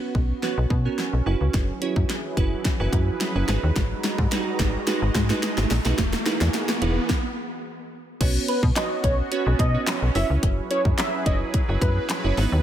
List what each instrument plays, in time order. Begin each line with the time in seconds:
Already playing: synth keys B3 C#4 F#4 B4, analog synth pad B3 C#4 F#4, riser
0.15 fm bass B1, kick
0.43 synth keys B3 C#4 F#4 B4, snare
0.58 fm bass B1
0.70 fm bass B2, kick
0.85 synth keys B3 C#4 F#4 A#4
0.98 snare
1.13 fm bass B1
1.26 fm bass F#1, analog synth pad F#3 E4 G#4 B4, synth keys C#4 E4 F#4 B4
1.41 fm bass C#2
1.54 fm bass F#1, kick, snare, closed hi-hat
1.82 synth keys C#4 E4 F#4 C#5, closed hi-hat
1.96 fm bass F#2, kick
2.10 snare, closed hi-hat
2.37 fm bass F#1, synth keys C#4 E4 F#4 B4, kick, closed hi-hat
2.65 kick, snare, closed hi-hat
2.80 fm bass F#1, synth keys C#4 E4 F#4 B4
2.93 fm bass F#2, kick, closed hi-hat
3.21 snare, closed hi-hat
3.35 fm bass F#1, synth keys C#4 E4 F#4 B4
3.48 fm bass G#1, analog synth pad G#3 F#4 D#5 A#5, synth keys D#4 F#4 G#4 B4, snare, closed hi-hat
3.63 fm bass D#2
3.76 fm bass G#1, kick, snare, closed hi-hat
4.04 snare, closed hi-hat
4.18 fm bass G#2, kick
4.31 synth keys D#4 F#4 G#4 B4, snare, closed hi-hat
4.59 fm bass G#1, kick, snare, closed hi-hat
4.87 synth keys D#4 F#4 G#4 B4, snare, closed hi-hat
5.02 fm bass G#1
5.15 fm bass G#2, kick, snare, closed hi-hat
5.30 synth keys D#4 F#4 G#4 B4, snare
5.43 snare, closed hi-hat
5.58 fm bass G#1, snare
5.71 fm bass A#1, snare, open hi-hat
5.85 fm bass B1, synth keys D#4 F#4 G#4 B4, snare
5.98 fm bass E1, analog synth pad E3 B3 F#4 G#4, kick, snare, closed hi-hat
6.13 snare
6.26 synth keys D#4 E4 G#4 B4, snare, closed hi-hat
6.41 fm bass E2, snare
6.54 snare, closed hi-hat
6.69 snare
6.81 fm bass E1, synth keys D#4 E4 G#4 B4, closed hi-hat
7.10 kick, snare
8.20 fm bass B1, synth keys B3 C#4 F#4 B4 C#5, analog synth pad B3 C#4 F#4, kick, closed hi-hat, crash
8.48 analog synth lead B4, closed hi-hat
8.63 fm bass B2, kick
8.76 synth keys B3 C#4 F#4 B4 C#5, analog synth lead D#5, snare, clap, closed hi-hat
9.04 fm bass B1, analog synth lead C#5, kick, closed hi-hat
9.32 synth keys B3 C#4 F#4 B4 C#5, closed hi-hat
9.46 fm bass B1
9.59 fm bass B2, analog synth lead D#5, kick, closed hi-hat
9.74 synth keys B3 C#4 F#4 B4 C#5
9.87 snare, clap, closed hi-hat
10.02 fm bass B1
10.15 fm bass F#1, analog synth pad F#3 E4 G#4 B4, synth keys C#4 E4 F#4 B4 C#5, analog synth lead E5, open hi-hat
10.30 fm bass C#2
10.43 fm bass F#1, kick, closed hi-hat
10.70 synth keys C#4 E4 F#4 B4 C#5, analog synth lead C#5, closed hi-hat
10.85 fm bass F#2, kick
10.98 analog synth lead E5, snare, clap, closed hi-hat
11.26 fm bass F#1, synth keys C#4 E4 F#4 B4 C#5, analog synth lead D#5, kick, closed hi-hat
11.54 kick, closed hi-hat
11.69 fm bass F#1, synth keys C#4 E4 F#4 B4 C#5
11.82 fm bass F#2, analog synth lead B4, kick, closed hi-hat
12.10 snare, clap, closed hi-hat
12.24 fm bass F#1, synth keys C#4 E4 F#4 B4 C#5
12.37 fm bass G#1, analog synth pad G#3 F#4 D#5 A#5, synth keys B3 D#4 F#4 G#4 B4, open hi-hat
12.52 fm bass D#2